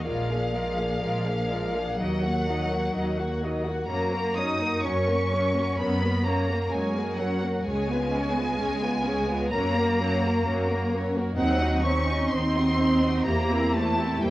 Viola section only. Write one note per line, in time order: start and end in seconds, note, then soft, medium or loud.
0.06 0.28 G#3 soft
0.06 0.28 F4 soft
0.30 0.54 A#3 soft
0.30 0.54 D4 soft
0.53 0.77 G#3 soft
0.53 0.77 F4 soft
0.77 1.02 A#3 soft
0.77 1.02 D4 soft
1.01 1.24 G#3 soft
1.01 1.24 F4 soft
1.27 1.51 A#3 soft
1.27 1.51 D4 soft
1.51 1.75 G#3 soft
1.51 1.75 F4 soft
1.75 1.99 A#3 soft
1.75 1.99 D4 soft
1.99 2.22 F#3 soft
1.99 2.22 D#4 soft
2.24 2.47 A#3 soft
2.24 2.47 F#4 soft
2.48 2.71 F#3 soft
2.48 2.71 D#4 soft
2.71 2.95 A#3 soft
2.71 2.94 F#4 soft
2.95 3.17 F#3 soft
2.95 3.17 D#4 soft
3.18 3.42 A#3 soft
3.18 3.42 F#4 soft
3.42 3.66 F#3 soft
3.42 3.66 D#4 soft
3.66 3.90 A#3 soft
3.66 3.90 F#4 soft
3.89 4.11 F#3 soft
3.89 4.11 C#4 soft
4.12 4.36 A#3 soft
4.36 4.60 F#3 soft
4.36 4.60 C#4 soft
4.60 4.84 A#3 soft
4.84 5.06 F#3 soft
4.84 5.06 C#4 soft
5.08 5.32 A#3 soft
5.31 5.55 F#3 soft
5.31 5.55 C#4 soft
5.55 5.79 A#3 soft
5.78 6.00 F#3 soft
5.78 6.00 C#4 soft
6.02 6.25 A#3 soft
6.25 6.48 F#3 soft
6.25 6.48 C#4 soft
6.48 6.72 A#3 soft
6.71 6.93 F#3 soft
6.71 6.93 C#4 soft
6.94 7.19 A#3 soft
7.18 7.42 F#3 soft
7.18 7.42 C#4 soft
7.43 7.66 A#3 soft
7.66 7.88 G#3 medium
7.66 7.88 C#4 medium
7.88 8.12 B3 soft
8.12 8.35 G#3 soft
8.12 8.36 C#4 soft
8.35 8.59 B3 soft
8.59 8.81 G#3 soft
8.59 8.81 C#4 soft
8.82 9.06 B3 soft
9.04 9.28 G#3 soft
9.04 9.28 C#4 soft
9.28 9.52 B3 soft
9.52 9.74 F#3 medium
9.52 9.74 C#4 medium
9.75 9.99 A#3 soft
9.99 10.22 F#3 soft
9.99 10.22 C#4 soft
10.22 10.45 A#3 soft
10.45 10.67 F#3 medium
10.45 10.67 C#4 soft
10.68 10.91 A#3 soft
10.91 11.14 F#3 medium
10.91 11.14 C#4 soft
11.14 11.37 A#3 soft
11.37 11.58 C4 medium
11.37 11.59 D#4 medium
11.60 11.83 C4 soft
11.60 11.83 D#4 soft
11.84 12.08 C4 soft
11.84 12.08 D#4 soft
12.09 12.32 C4 medium
12.09 12.31 D#4 soft
12.33 12.54 C4 soft
12.33 12.54 D#4 soft
12.55 12.78 C4 soft
12.55 12.78 D#4 soft
12.79 13.02 C4 medium
12.79 13.01 D#4 soft
13.03 13.26 C4 soft
13.03 13.26 D#4 soft
13.27 13.49 A#3 medium
13.27 13.49 G4 medium
13.50 13.74 C4 soft
13.50 13.74 E4 soft
13.74 13.98 A#3 soft
13.74 13.98 G4 soft
13.99 14.23 C4 medium
13.99 14.23 E4 medium
14.22 14.30 A#3 soft
14.22 14.30 G4 soft